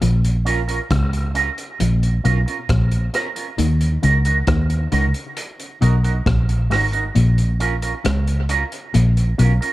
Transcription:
0.01 0.79 A#1 loud
0.01 0.28 A#2 medium
0.01 closed hi-hat medium
0.24 closed hi-hat soft
0.45 0.59 C#4 medium
0.45 0.59 F4 medium
0.45 0.59 A#4 medium
0.45 closed hi-hat medium
0.68 0.79 C#4 soft
0.68 0.79 F4 medium
0.68 0.78 A#4 medium
0.68 closed hi-hat medium
0.91 1.49 C#2 medium
0.91 1.17 C#3 medium
0.91 kick loud
0.91 cross-stick loud
0.91 closed hi-hat medium
1.13 closed hi-hat soft
1.34 1.48 C#4 medium
1.34 1.48 F4 medium
1.34 1.49 A#4 medium
1.34 closed hi-hat medium
1.58 closed hi-hat soft
1.80 2.19 A#1 loud
1.80 2.07 A#2 medium
1.80 closed hi-hat medium
2.03 closed hi-hat soft
2.24 2.44 B1 medium
2.24 2.38 B2 medium
2.24 2.37 C#4 medium
2.24 2.38 F4 medium
2.24 2.38 A#4 loud
2.24 closed hi-hat medium
2.46 2.58 C#4 soft
2.46 2.57 F4 medium
2.46 2.57 A#4 medium
2.46 closed hi-hat soft
2.69 3.08 A#1 medium
2.69 2.96 A#2 medium
2.69 kick loud
2.69 cross-stick loud
2.69 closed hi-hat medium
2.91 closed hi-hat medium
3.13 3.27 C#4 medium
3.13 3.27 F4 medium
3.13 3.28 A#4 medium
3.13 cross-stick medium
3.13 closed hi-hat medium
3.36 3.47 C#4 soft
3.36 3.47 F4 soft
3.36 3.46 A#4 medium
3.36 closed hi-hat medium
3.58 3.97 D#2 loud
3.58 3.85 D#3 medium
3.58 closed hi-hat medium
3.81 closed hi-hat medium
4.02 4.42 C#2 medium
4.02 4.30 C#3 medium
4.02 4.16 D#4 medium
4.02 4.16 F#4 medium
4.02 4.17 A#4 medium
4.02 closed hi-hat medium
4.25 4.36 D#4 medium
4.25 4.36 F#4 medium
4.25 4.36 A#4 medium
4.25 closed hi-hat medium
4.47 4.86 D#2 medium
4.47 4.74 D#3 medium
4.47 kick loud
4.47 cross-stick loud
4.47 closed hi-hat medium
4.70 closed hi-hat soft
4.92 5.12 C#2 medium
4.92 5.06 C#3 medium
4.92 5.05 D#4 medium
4.92 5.06 F#4 medium
4.92 5.06 A#4 medium
4.92 closed hi-hat medium
5.14 closed hi-hat soft
5.37 closed hi-hat medium
5.60 closed hi-hat soft
5.81 6.20 B1 medium
5.81 6.08 B2 medium
5.81 5.94 D#4 medium
5.81 5.95 F#4 medium
5.81 5.95 A#4 medium
5.81 closed hi-hat medium
6.03 6.15 D#4 medium
6.03 6.14 F#4 medium
6.03 6.14 A#4 medium
6.03 closed hi-hat soft
6.26 6.71 A#1 medium
6.26 6.53 A#2 medium
6.26 kick loud
6.26 cross-stick loud
6.26 closed hi-hat medium
6.49 closed hi-hat medium
6.70 7.10 G#1 medium
6.70 6.97 G#2 medium
6.70 6.84 D#4 medium
6.70 6.84 F#4 medium
6.70 6.84 A#4 medium
6.70 cross-stick medium
6.70 open hi-hat medium
6.92 7.04 D#4 medium
6.92 7.04 F#4 medium
6.92 7.03 A#4 medium
6.92 closed hi-hat medium
7.15 7.93 A#1 loud
7.15 7.42 A#2 medium
7.15 closed hi-hat medium
7.38 closed hi-hat soft
7.60 7.73 C#4 medium
7.60 7.73 F4 medium
7.60 7.74 A#4 medium
7.60 closed hi-hat medium
7.82 7.93 C#4 soft
7.82 7.93 F4 medium
7.82 7.93 A#4 medium
7.82 closed hi-hat medium
8.04 8.63 C#2 medium
8.04 8.31 C#3 medium
8.04 cross-stick loud
8.04 closed hi-hat medium
8.27 closed hi-hat soft
8.49 8.62 C#4 medium
8.49 8.63 F4 medium
8.49 8.63 A#4 medium
8.49 closed hi-hat medium
8.72 closed hi-hat soft
8.94 9.33 A#1 medium
8.94 9.21 A#2 medium
8.94 closed hi-hat medium
9.17 closed hi-hat soft
9.38 9.58 B1 medium
9.38 9.52 B2 medium
9.38 9.51 C#4 medium
9.38 9.52 F4 medium
9.38 9.52 A#4 medium
9.38 closed hi-hat medium
9.61 9.72 C#4 soft
9.61 9.72 F4 medium
9.61 9.71 A#4 medium
9.61 closed hi-hat soft

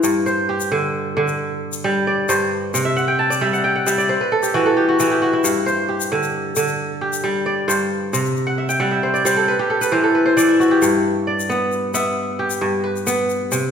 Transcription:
0.00 2.28 G2 medium
0.00 0.25 E4 medium
0.00 0.48 G4 medium
0.00 0.26 C5 medium
0.00 shaker medium
0.26 1.45 C5 medium
0.26 shaker soft
0.49 1.90 G4 medium
0.61 shaker soft
0.72 1.15 D3 medium
1.17 2.79 D3 medium
1.28 shaker soft
1.73 shaker soft
1.84 2.79 G3 medium
2.07 3.18 D5 medium
2.29 2.79 G2 medium
2.29 3.48 C5 medium
2.29 shaker medium
2.74 4.14 C3 medium
2.74 shaker medium
2.85 3.41 E5 medium
2.96 3.47 F#5 medium
2.96 shaker soft
3.08 3.59 G5 medium
3.19 4.06 A5 medium
3.30 3.98 D5 medium
3.30 shaker soft
3.41 3.85 G3 medium
3.41 3.87 E5 medium
3.53 3.75 F#5 medium
3.53 shaker soft
3.64 4.60 G5 medium
3.75 4.49 F#5 medium
3.87 4.14 G3 medium
3.87 4.90 E5 medium
3.87 shaker medium
3.98 5.09 D5 medium
3.98 shaker soft
4.09 5.28 C5 medium
4.21 5.44 B4 medium
4.32 4.65 A4 medium
4.43 4.76 G4 medium
4.43 shaker medium
4.54 4.99 E3 medium
4.54 4.83 F#4 medium
4.66 5.98 A4 medium
4.77 5.11 G4 medium
4.89 5.17 F#4 medium
5.00 5.49 E3 medium
5.00 5.33 E4 medium
5.00 shaker medium
5.11 5.88 G4 medium
5.22 5.50 F#4 medium
5.33 6.90 E4 medium
5.44 7.67 G2 medium
5.44 shaker medium
5.66 6.85 C5 medium
5.66 shaker soft
5.89 7.01 G4 medium
6.01 shaker medium
6.12 6.55 D3 medium
6.23 shaker soft
6.56 8.18 D3 medium
6.56 shaker medium
6.68 shaker soft
7.01 8.43 G4 medium
7.13 shaker medium
7.24 8.18 G3 medium
7.46 8.57 D5 medium
7.68 8.18 G2 medium
7.68 8.87 C5 medium
7.68 shaker medium
8.13 9.53 C3 medium
8.13 shaker medium
8.25 shaker soft
8.36 shaker soft
8.47 8.75 F#5 medium
8.58 8.91 E5 medium
8.69 9.62 G5 medium
8.69 shaker soft
8.80 9.24 G3 medium
8.80 9.31 F#5 medium
8.91 9.95 E5 medium
9.03 9.25 C5 medium
9.14 10.24 D5 medium
9.14 shaker soft
9.25 9.53 G3 medium
9.25 9.54 C5 medium
9.25 shaker medium
9.36 9.70 A4 medium
9.48 9.81 B4 medium
9.59 10.66 G4 medium
9.70 10.03 A4 medium
9.81 10.14 B4 medium
9.81 shaker medium
9.92 10.36 E3 medium
9.92 10.21 C5 medium
10.04 11.35 A4 medium
10.15 11.38 B4 medium
10.26 11.44 C5 medium
10.37 10.87 E3 medium
10.37 11.27 D5 medium
10.37 shaker medium
10.49 12.05 E4 medium
10.60 10.88 F#4 medium
10.60 shaker soft
10.71 12.12 G4 medium
10.82 12.60 G2 medium
10.82 shaker medium
11.27 12.38 D5 medium
11.40 shaker soft
11.49 11.94 B3 medium
11.49 shaker soft
11.72 shaker soft
11.94 13.06 B3 medium
11.94 12.98 E5 medium
11.94 shaker medium
12.39 13.71 G4 medium
12.50 shaker medium
12.61 13.57 G2 medium
12.84 13.58 B4 medium
12.96 shaker soft
13.07 13.58 B3 medium
13.07 shaker medium
13.30 shaker soft
13.52 13.71 C3 medium
13.52 shaker medium

